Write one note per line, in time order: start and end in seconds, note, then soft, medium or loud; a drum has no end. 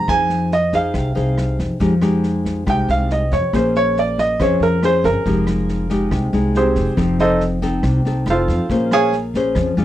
0.08 0.90 F2 medium
0.08 0.92 F3 medium
0.08 0.51 D#4 medium
0.08 0.51 G#4 soft
0.08 0.51 C5 medium
0.08 0.48 G#5 medium
0.08 kick medium
0.08 cross-stick soft
0.08 snare soft
0.29 snare soft
0.52 0.72 D#5 medium
0.52 snare soft
0.73 1.12 D#4 medium
0.73 1.12 G#4 medium
0.73 1.13 C5 medium
0.73 1.56 F5 medium
0.73 kick soft
0.73 snare soft
0.94 1.14 C2 medium
0.94 1.78 C3 soft
0.94 kick medium
0.94 cross-stick medium
0.94 snare soft
1.15 1.61 C2 medium
1.15 1.76 D#4 medium
1.15 1.76 G#4 medium
1.15 1.77 C5 medium
1.15 snare soft
1.38 cross-stick medium
1.38 snare soft
1.59 1.69 F2 medium
1.59 kick soft
1.59 snare soft
1.80 2.63 F2 medium
1.80 2.64 F3 soft
1.80 1.93 G#3 medium
1.80 1.93 D#4 medium
1.80 1.93 G4 medium
1.80 kick medium
1.80 snare soft
2.01 2.63 G#3 medium
2.01 2.63 D#4 medium
2.01 2.63 G4 medium
2.01 cross-stick medium
2.01 snare soft
2.23 snare soft
2.45 kick soft
2.45 snare soft
2.66 2.87 C2 medium
2.66 3.50 C3 medium
2.66 3.24 G#3 medium
2.66 3.25 D#4 medium
2.66 3.25 G4 medium
2.66 2.89 G5 medium
2.66 kick medium
2.66 cross-stick medium
2.66 snare soft
2.88 3.33 C2 medium
2.88 3.10 F5 medium
2.88 snare soft
3.10 3.32 D#5 medium
3.10 snare soft
3.32 3.41 F2 medium
3.32 3.53 C#5 medium
3.32 kick soft
3.32 snare soft
3.53 4.35 A#1 medium
3.53 4.37 A#3 soft
3.53 4.36 C#4 soft
3.53 4.36 G#4 medium
3.53 4.36 C5 medium
3.53 3.75 C5 medium
3.53 kick medium
3.53 cross-stick medium
3.53 snare soft
3.75 3.96 C#5 medium
3.75 snare soft
3.97 4.18 D5 medium
3.97 snare soft
4.18 4.39 D#5 medium
4.18 kick soft
4.18 snare soft
4.39 4.59 F2 medium
4.39 5.23 F3 medium
4.39 4.79 C#4 medium
4.39 4.79 G#4 medium
4.39 4.79 C5 medium
4.39 4.61 C#5 medium
4.39 kick medium
4.39 cross-stick medium
4.39 snare soft
4.60 5.06 F2 medium
4.60 4.82 A#4 medium
4.60 snare soft
4.83 5.24 C#4 medium
4.83 5.24 G#4 medium
4.83 5.24 C5 medium
4.83 5.04 C5 medium
4.83 cross-stick medium
4.83 snare soft
5.04 5.14 G1 medium
5.04 6.08 A#4 medium
5.04 kick soft
5.04 snare soft
5.26 6.08 F1 medium
5.26 6.09 F3 soft
5.26 5.87 G#3 medium
5.26 5.87 D#4 medium
5.26 5.87 G4 medium
5.26 kick medium
5.26 snare soft
5.47 cross-stick medium
5.47 snare soft
5.69 snare soft
5.90 6.29 G#3 medium
5.90 6.29 D#4 medium
5.90 6.30 G4 medium
5.90 kick soft
5.90 snare soft
6.11 6.31 C2 medium
6.11 6.95 C3 soft
6.11 kick medium
6.11 cross-stick medium
6.11 snare soft
6.33 6.78 C2 medium
6.33 6.94 G#3 medium
6.33 6.94 D#4 medium
6.33 snare soft
6.54 7.16 C4 medium
6.54 7.16 G4 soft
6.54 6.96 G#4 soft
6.54 7.16 C5 medium
6.54 snare soft
6.75 6.86 F1 medium
6.75 kick soft
6.75 snare soft
6.97 7.79 F1 medium
6.97 7.81 F3 soft
6.97 7.58 C4 soft
6.97 7.58 D#4 medium
6.97 7.58 A4 medium
6.97 kick medium
6.97 cross-stick medium
6.97 snare soft
7.19 7.40 D#4 medium
7.19 7.41 A4 medium
7.19 7.40 C5 medium
7.19 7.40 D#5 medium
7.19 snare soft
7.40 snare soft
7.62 8.01 C4 medium
7.62 8.01 D#4 medium
7.62 8.02 A4 medium
7.62 kick soft
7.62 snare soft
7.83 8.03 C2 medium
7.83 8.24 C3 medium
7.83 kick medium
7.83 cross-stick medium
7.83 snare soft
8.05 8.25 C2 medium
8.05 8.66 C4 soft
8.05 8.66 D#4 medium
8.05 8.66 A4 medium
8.05 snare soft
8.26 8.50 F1 loud
8.26 cross-stick medium
8.26 snare soft
8.30 8.89 F4 medium
8.30 8.68 A4 soft
8.30 8.89 C5 medium
8.30 8.89 F5 medium
8.48 8.58 F2 medium
8.48 kick soft
8.48 snare soft
8.70 9.51 A#1 medium
8.70 9.53 A#3 soft
8.70 9.12 C#4 soft
8.70 9.12 G#4 soft
8.70 9.13 C5 medium
8.70 kick medium
8.70 snare soft
8.91 9.13 G#4 medium
8.91 9.13 C#5 medium
8.91 9.13 F5 medium
8.91 9.13 G#5 medium
8.91 cross-stick medium
8.91 snare soft
9.13 snare soft
9.34 9.74 C#4 medium
9.34 9.74 G#4 medium
9.34 9.74 C5 medium
9.34 kick soft
9.34 snare soft
9.55 9.75 F2 medium
9.55 9.85 F3 medium
9.55 kick medium
9.55 cross-stick medium
9.55 snare soft
9.77 9.85 F2 medium
9.77 9.85 G#3 medium
9.77 9.85 D4 medium
9.77 9.85 F4 medium
9.77 snare soft